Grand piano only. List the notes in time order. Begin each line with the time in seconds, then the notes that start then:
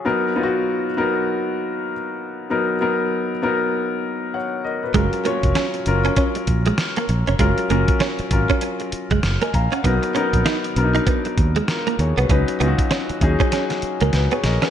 0.05 F#3 B3 D#4 A#4
0.35 F#3 B3 D#4 F4
0.43 F#4
0.97 F#3 B3 D#4 A#4
2.50 F#3 B3 D#4 A#4
2.81 F#3 B3 D#4 A#4
3.42 F#3 B3 D#4 A#4
4.34 C#5 F#5
4.64 A#4 D#5
4.83 F#4 B4
4.94 F#3 C#4 F4 A#4
5.25 F#3 C#4 F4 C#5
5.86 F#3 C#4 F4 A#4
7.39 F#3 C#4 F4 A#4
7.70 F#3 C#4 F4 A#4
8.31 F#3 C#4 F4 A#4
9.42 D#5 G#5
9.54 F5 A#5
9.73 C#5 F#5
9.85 F#3 B3 D#4 A#4
10.15 F#3 B3 D#4 A#4
10.77 F#3 B3 D4 A#4
10.84 D#4
11.69 F4 A#4
12.00 G#4 C#5
12.18 F#4 B4
12.29 F#3 C#4 D#4 B4
12.60 F#3 C#4 D#4 F4
12.68 F#4
13.21 F#3 C#4 D#4 G#4
14.14 F#4 B4
14.32 G#4 C#5
14.44 A#4 D#5
14.63 F#4 B4